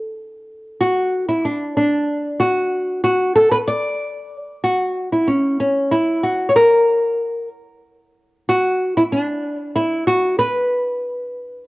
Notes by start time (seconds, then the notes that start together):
0.81 F#4
1.29 E4
1.45 D4
1.77 D4
2.40 F#4
3.04 F#4
3.35 A4
3.51 B4
3.68 D5
4.64 F#4
5.12 E4
5.27 C#4
5.60 C#4
5.91 E4
6.23 F#4
6.49 C#5
6.56 A#4
8.49 F#4
8.97 E4
9.12 D4
9.76 E4
10.07 F#4
10.39 B4